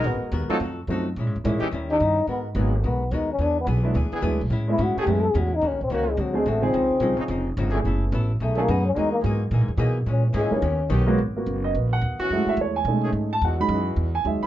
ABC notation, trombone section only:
X:1
M:4/4
L:1/8
Q:"Swing" 1/4=216
K:G#m
V:1 name="Trombone section"
[G,B,FA]2 z [F,D^E=A] z4 | z3 [E,CD=G] z [E,CDG] z2 | z2 [F,A,B,G]3 z3 | z4 z [E,B,=DG] z2 |
z3 [E,=A,CG] z4 | z2 [D,A,CF]2 z2 [=D,G,]2 | z3 [C,^E,^B,D] z3 [=E,=A,=B,G] | z4 z [D,=A,CG] z2 |
z2 [F,A,DG]3 z [F,A,DG]2 | z2 [E,A,CG]2 z2 [D,B,C=G]2 | z6 z [E,CF]- | [E,CF]2 z3 [D,=A,CG] z2 |
[E,G,DF]2 [E,G,DF]3 z2 [E,B,CD] |]